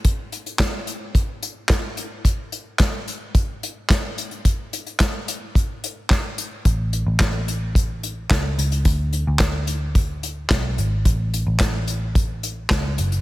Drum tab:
HH |x-xxx-x-x-x-x-x-|x-x-x-x-x-x-x-xx|x-xxx-x-x-x-x-x-|x-x-x-x-x-x-x-xx|
CP |----x-------x---|----x-------x---|----x-------x---|----x-------x---|
SD |----o-------o---|----o-------o---|----o-------o---|----o-------o---|
BD |o---o---o---o---|o---o---o---o---|o---o---o---o---|o---o---o---o---|

HH |x-x-x-x-x-x-x-x-|x-x-x-x-x-x-x-xx|
CP |----x-------x---|----x-------x---|
SD |----o-------o---|----o-------o---|
BD |o---o---o---o---|o---o---o---o---|